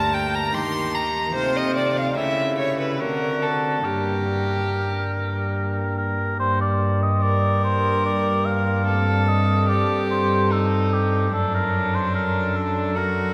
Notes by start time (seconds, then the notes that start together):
Already playing: D2 A#3 D4 G4 A#4 A5
0.14 G5
0.35 A#5
0.50 D#3 A#3 D#4 G4
0.54 D#3 G4 C6
0.94 A#5
1.31 A3 D#4 F4 G4 C5
1.35 C3
1.56 D#5
1.76 D5
1.97 F5
2.12 A3 E4 G4
2.16 C#3 E4 E5
2.58 C#5
2.79 B4
2.95 C4 D4 F#4
3.00 D3 F#4 A#4
3.42 A4
3.79 A#3 D4 G4
3.84 G2 G4 A#4
5.97 A#4
6.36 A#3 D4 G4
6.40 G2 C5
6.61 D5
7.02 D#5
7.22 A#4 D5
7.64 C5
8.05 D5
8.45 F5
8.83 A3 C4 A4
9.28 D#5
9.68 G4 D5
10.11 C5
10.51 D#4 A4
10.93 G4
11.29 A3 D4 A4
11.33 F#2 A4
11.54 A#4
11.95 C5
12.15 A#4
12.56 A4
12.96 F#4 A#4